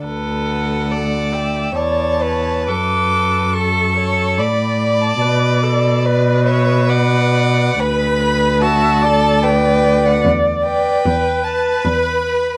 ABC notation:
X:1
M:3/4
L:1/16
Q:1/4=72
K:D
V:1 name="Violin"
z2 f4 g2 a4 | d'4 c'4 b3 a | z2 d4 e2 f4 | b4 a4 g3 f |
z2 g4 a2 b4 |]
V:2 name="Viola"
B4 A2 e2 d2 c2 | B4 A2 c2 d4 | B2 A2 B8 | B4 e2 d6- |
d4 B8 |]
V:3 name="Violin"
A4 d4 c2 B2 | A4 A2 A2 d4- | d4 B2 c2 d4 | B2 B2 F2 A2 B4 |
z2 B4 B4 B2 |]
V:4 name="Cello" clef=bass
D,,8 E,,4 | F,,8 A,,4 | B,,12 | D,,12 |
E,,4 E,,4 E,,4 |]